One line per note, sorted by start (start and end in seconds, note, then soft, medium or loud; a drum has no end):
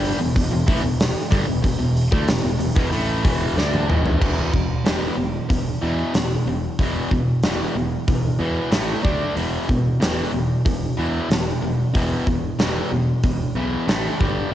0.00 0.18 G1 medium
0.00 0.18 G2 loud
0.00 0.19 D3 loud
0.00 0.19 G3 loud
0.05 open hi-hat medium
0.19 0.34 E1 medium
0.19 0.34 E2 medium
0.19 0.35 B2 medium
0.35 0.51 E1 medium
0.35 0.50 E2 medium
0.35 0.50 B2 medium
0.35 kick loud
0.35 open hi-hat medium
0.51 0.67 E1 medium
0.51 0.67 E2 medium
0.51 0.66 B2 medium
0.66 0.83 A1 medium
0.66 0.82 A2 medium
0.66 0.82 E3 loud
0.66 kick loud
0.66 open hi-hat medium
0.82 1.13 E1 medium
0.82 1.08 E2 medium
0.82 1.09 B2 medium
1.00 snare loud
1.00 open hi-hat medium
1.31 1.47 G1 medium
1.31 1.46 G2 medium
1.31 1.46 D3 loud
1.31 kick loud
1.31 open hi-hat medium
1.46 1.63 E1 medium
1.46 1.61 E2 medium
1.46 1.62 B2 medium
1.62 1.79 E1 medium
1.62 1.77 E2 medium
1.62 1.78 B2 medium
1.62 kick medium
1.62 open hi-hat medium
1.78 2.10 E1 medium
1.78 2.05 E2 medium
1.78 2.05 B2 medium
1.97 open hi-hat medium
2.11 2.27 D2 loud
2.11 2.27 D3 medium
2.11 2.27 A3 medium
2.11 kick loud
2.28 2.43 E1 medium
2.28 2.42 E2 medium
2.28 2.42 B2 medium
2.28 snare loud
2.28 open hi-hat medium
2.43 2.59 E1 medium
2.43 2.58 E2 medium
2.43 2.58 B2 medium
2.59 2.75 E1 medium
2.59 2.74 E2 medium
2.59 2.75 B2 medium
2.59 open hi-hat medium
2.75 2.91 E1 medium
2.75 2.91 E2 medium
2.75 2.91 B2 loud
2.75 kick loud
2.91 3.22 A1 medium
2.91 3.23 A2 medium
2.91 3.23 E3 medium
2.91 3.23 A3 loud
2.91 open hi-hat medium
3.24 3.54 E1 medium
3.24 3.55 E2 medium
3.24 3.55 B2 medium
3.24 3.56 E3 loud
3.24 kick loud
3.24 open hi-hat medium
3.56 3.86 D2 medium
3.56 3.88 D3 medium
3.56 3.88 A3 medium
3.56 3.88 D4 loud
3.56 snare medium
3.74 high tom medium
3.87 4.18 E1 medium
3.87 4.18 E2 medium
3.87 4.19 B2 loud
3.87 4.20 E3 loud
3.87 mid tom medium
4.05 floor tom medium
4.19 4.41 E1 medium
4.19 4.50 E2 medium
4.19 4.51 B2 medium
4.19 4.51 E3 loud
4.19 kick medium
4.19 crash medium
4.53 4.73 E1 medium
4.53 4.82 E2 medium
4.53 4.82 B2 medium
4.53 kick medium
4.84 5.04 E1 medium
4.84 5.15 E2 medium
4.84 5.15 B2 medium
4.84 5.16 E3 medium
4.84 snare loud
4.84 open hi-hat medium
5.17 5.37 E1 medium
5.17 5.46 E2 medium
5.17 5.47 B2 medium
5.49 5.70 E1 medium
5.49 5.78 E2 medium
5.49 5.78 B2 medium
5.49 kick medium
5.49 open hi-hat medium
5.82 6.12 E2 medium
5.82 6.02 E2 medium
5.82 6.12 B2 medium
5.82 6.13 E3 medium
6.14 6.34 E1 medium
6.14 6.43 E2 medium
6.14 6.43 B2 medium
6.14 snare loud
6.14 open hi-hat medium
6.47 6.66 E1 medium
6.47 6.76 E2 medium
6.47 6.76 B2 medium
6.79 6.98 E1 medium
6.79 7.09 E2 medium
6.79 7.10 B2 medium
6.79 7.10 E3 loud
6.79 kick loud
6.79 open hi-hat soft
7.11 7.31 E1 medium
7.11 7.41 E2 medium
7.11 7.41 B2 medium
7.11 kick medium
7.43 7.63 E1 medium
7.43 7.74 E2 medium
7.43 7.75 B2 medium
7.43 7.75 E3 medium
7.43 snare loud
7.43 open hi-hat medium
7.75 7.95 E1 medium
7.75 8.05 E2 medium
7.75 8.05 B2 medium
8.08 8.27 E1 medium
8.08 8.37 E2 medium
8.08 8.37 B2 medium
8.08 kick loud
8.08 open hi-hat soft
8.39 8.59 E2 medium
8.39 8.70 E2 medium
8.39 8.70 B2 medium
8.39 8.71 E3 medium
8.71 8.92 A1 medium
8.71 9.02 A2 medium
8.71 9.02 E3 medium
8.71 9.03 A3 loud
8.71 snare loud
8.71 open hi-hat medium
9.04 9.24 D2 medium
9.04 9.34 D3 medium
9.04 9.35 A3 medium
9.04 9.35 D4 medium
9.04 kick loud
9.36 9.56 E1 medium
9.36 9.66 E2 medium
9.36 9.67 B2 medium
9.36 9.67 E3 loud
9.36 open hi-hat soft
9.69 9.89 E1 medium
9.69 9.98 E2 medium
9.69 9.98 B2 medium
9.69 kick medium
10.00 10.21 E1 medium
10.00 10.31 E2 medium
10.00 10.31 B2 medium
10.00 10.31 E3 loud
10.00 snare loud
10.00 open hi-hat medium
10.32 10.54 E1 medium
10.32 10.62 E2 medium
10.32 10.62 B2 medium
10.65 10.85 E1 medium
10.65 10.94 E2 medium
10.65 10.95 B2 medium
10.65 kick loud
10.65 open hi-hat medium
10.97 11.28 E2 medium
10.97 11.18 E2 medium
10.97 11.28 B2 medium
10.97 11.29 E3 medium
11.30 11.50 E1 medium
11.30 11.59 E2 medium
11.30 11.59 B2 medium
11.30 snare loud
11.30 open hi-hat medium
11.62 11.82 E1 medium
11.62 11.91 E2 medium
11.62 11.92 B2 medium
11.94 12.14 E1 medium
11.94 12.24 E2 medium
11.94 12.25 B2 loud
11.94 12.25 E3 medium
11.94 kick loud
11.94 open hi-hat soft
12.27 12.46 E1 medium
12.27 12.56 E2 medium
12.27 12.56 B2 medium
12.27 kick medium
12.59 12.79 E1 medium
12.59 12.89 E2 medium
12.59 12.90 B2 medium
12.59 12.90 E3 medium
12.59 snare loud
12.59 open hi-hat soft
12.91 13.11 E1 medium
12.91 13.20 E2 medium
12.91 13.20 B2 medium
13.23 13.43 E1 medium
13.23 13.53 E2 medium
13.23 13.53 B2 medium
13.23 kick loud
13.23 open hi-hat soft
13.55 13.75 B1 medium
13.55 13.86 E2 medium
13.55 13.87 B2 medium
13.55 13.86 E3 medium
13.87 14.07 A1 medium
13.87 14.18 A2 medium
13.87 14.18 E3 medium
13.87 14.19 A3 medium
13.87 snare loud
13.87 open hi-hat medium
14.19 14.40 G1 medium
14.19 14.50 G2 medium
14.19 14.50 D3 medium
14.19 14.50 G3 medium
14.19 kick loud